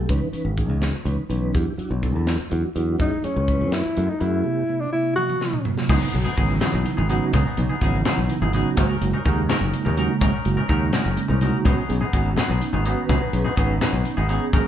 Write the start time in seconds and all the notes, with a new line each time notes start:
0.09 C#2 E3 C#4 D#4 B4, kick, closed hi-hat
0.33 E3 C#4 D#4 B4, muted fingered electric bass stroke, closed hi-hat
0.45 G#1
0.57 E3 C#4 D#4 G#4, kick, closed hi-hat
0.69 C#2
0.82 snare, closed hi-hat
0.93 muted fingered electric bass stroke
1.05 C#2 E3 C#4 D#4 B4, closed hi-hat
1.29 B1 E3 C#4 D#4 B4, closed hi-hat
1.53 E2 F#3 D4 E4 G4, kick, closed hi-hat
1.78 F#3 D4 E4 F#4, muted fingered electric bass stroke, closed hi-hat
1.91 B1
2.02 F#3 D4 E4 A4, kick, closed hi-hat
2.15 E2
2.27 snare, closed hi-hat
2.39 muted fingered electric bass stroke
2.50 E2 F#3 D4 E4 F#4, closed hi-hat
2.75 E2 F#3 D4 E4 F#4, closed hi-hat
2.99 F#2 F#3 A3 D#4 E4 G#4, kick, closed hi-hat
3.22 F#3 A3 C#4 E4 G#4, muted fingered electric bass stroke, closed hi-hat
3.36 C#2
3.47 F#3 A3 E4 B4, kick, closed hi-hat
3.61 F#2
3.72 E4, snare, closed hi-hat
3.86 muted fingered electric bass stroke
3.96 F#2 F#3 A3 E4 A4, closed hi-hat
4.09 D#4
4.20 F#2 F#3 A3 E4 G#4, closed hi-hat
4.44 C3 A3 B3 G4
4.69 C3 A3 B3 E4
4.80 D4
4.92 C3 A3 B3 E4
5.16 C3 F#3 A#3 F4 F#4, high tom
5.29 high tom
5.41 C3 F#3 A#3 F4, snare
5.53 mid tom
5.65 C3 F#3 A#3 F4, floor tom
5.78 snare
5.89 C#2 C#3 F#3 B3 D#4 G#4, kick, crash, high conga, low conga
6.01 B3 D#4 G#4, muted fingered electric bass stroke
6.13 B1 C#3 F#3 B3 F#4, closed hi-hat
6.25 B3 D#4 G#4, low conga
6.37 G#1 C#3 E3 F#3 B3 C#4 D#4 E4 G#4, kick, closed hi-hat
6.61 F#3 B3 D#4 G#4, snare, closed hi-hat, high conga, low conga
6.73 B1 B3 D#4 G#4
6.85 C#3 F#3 B3 D#4, closed hi-hat
6.97 G#1 B3 D#4 G#4, low conga
7.09 C#3 F#3 B3 C#4 D#4 F#4 G#4, closed hi-hat
7.33 C#2 F#3 B3 D#4 G#4, kick, closed hi-hat, high conga, low conga
7.46 B3 D#4 G#4, muted fingered electric bass stroke
7.57 B1 C#3 F#3 B3 D#4, closed hi-hat
7.69 B3 D#4 G#4
7.81 G#1 C#3 E3 F#3 B3 C#4 D#4 E4 G#4, kick, closed hi-hat
8.05 F#3 B3 D#4 G#4, snare, closed hi-hat, high conga, low conga
8.18 B1 B3 D#4
8.29 C#3 F#3 B3 D#4, closed hi-hat
8.42 G#1 B3 D#4 G#4, low conga
8.53 C#3 F#3 B3 C#4 D#4 F#4 G#4, closed hi-hat, low conga
8.77 G#1 C#3 F#3 G#3 A#3 C#4 D#4 F#4 A#4, kick, closed hi-hat, high conga, low conga
8.89 C#4 D#4 A#4, muted fingered electric bass stroke
9.01 F#1 C#3 G#3 A#3 F#4, closed hi-hat
9.13 C#4 D#4 A#4, low conga
9.25 D#2 C#3 D#3 F#3 G#3 A#3 C#4 D#4 G#4 A#4, kick, closed hi-hat
9.39 low conga
9.49 F#3 C#4 D#4 A#4, snare, closed hi-hat, high conga, low conga
9.61 F#1 C#4 D#4 A#4
9.73 C#3 G#3 A#3 F4, closed hi-hat
9.85 D#2 C#4 D#4 A#4, low conga
9.97 C#3 F#3 G#3 A#3 C#4 D#4 F#4 A#4, closed hi-hat
10.21 G#1 F#3 C#4 D#4 A#4, kick, closed hi-hat, high conga, low conga
10.33 C#4 D#4 A#4, muted fingered electric bass stroke
10.45 F#1 C#3 G#3 A#3 F#4, closed hi-hat
10.57 C#4 D#4 A#4, low conga
10.68 D#2 C#3 F#3 G#3 A#3 C#4 D#4 A#4, kick, closed hi-hat
10.82 low conga
10.93 F#3 C#4 D#4 A#4, snare, closed hi-hat, high conga, low conga
11.04 F#1 C#4 D#4 A#4, low conga
11.16 C#3 G#3 A#3 C#4, closed hi-hat
11.28 C2 C#4 D#4 A#4, low conga
11.41 C#3 F#3 G#3 A#3 C#4 D#4 F#4 A#4, closed hi-hat
11.64 C#2 D#3 F#3 B3 C#4 D#4 F#4 G#4, kick, closed hi-hat, high conga, low conga
11.77 B3 D#4 G#4, muted fingered electric bass stroke
11.89 B1 D#3 B3 C#4 G#4, closed hi-hat
12.00 B3 D#4 G#4, low conga
12.13 G#1 D#3 F#3 B3 C#4 D#4 F#4 G#4, kick, closed hi-hat
12.36 F#3 B3 D#4 G#4, snare, closed hi-hat, high conga, low conga
12.49 B1 B3 D#4 G#4
12.62 D#3 B3 C#4 D#4, closed hi-hat
12.73 G#1 B3 D#4 G#4, low conga
12.84 D#3 F#3 B3 C#4 D#4 F#4 G#4 B4, closed hi-hat, low conga
13.09 C#2 F#3 B3 D#4 G#4, kick, closed hi-hat, high conga, low conga
13.21 B3 D#4 G#4, muted fingered electric bass stroke
13.33 B1 D#3 B3 C#4 G#4, closed hi-hat
13.44 B3 D#4 G#4, low conga
13.56 G#1 D#3 F#3 B3 C#4 D#4 G#4 B4, kick, closed hi-hat
13.81 F#3 B3 D#4 G#4, snare, closed hi-hat, high conga, low conga
13.93 B1 B3 D#4 G#4
14.05 D#3 B3 C#4 D#4, closed hi-hat
14.17 G#1 B3 D#4 G#4, low conga
14.29 D#3 F#3 B3 C#4 D#4 G#4, closed hi-hat
14.53 G#1 F#3 A#3 C#4 D#4 G#4 A#4, kick, closed hi-hat, high conga, low conga